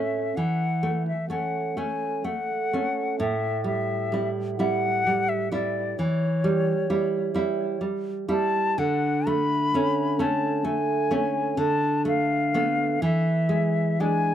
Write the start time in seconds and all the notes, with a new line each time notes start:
Already playing: A2 A3 C#4 E5
0.36 E3 F#5
0.83 A3
1.08 E5
1.30 A3 C#4 F#5
1.77 A3 C#4 G#5
2.24 A3 F#5
2.73 A3 C#4
3.20 A2 E5
3.64 G3 E5
4.12 G3 E4
4.58 G3 E4 F#5
5.07 G3
5.29 E5
5.52 G3 E4 D5
5.98 E3 C#5
6.44 G3
6.90 G3 E4
7.34 G3 E4
7.81 G3
8.28 G3 E4 A5
8.78 D3 F#5
9.27 A3 B5
9.74 A3 C#4
10.19 A3 C#4 A5
10.64 A3 G#5
11.11 A3 C#4
11.57 D3 A5
12.05 A3 F5
12.54 A3 B3
13.02 E3 E5
13.49 G#3
14.00 G#3 D4 G#5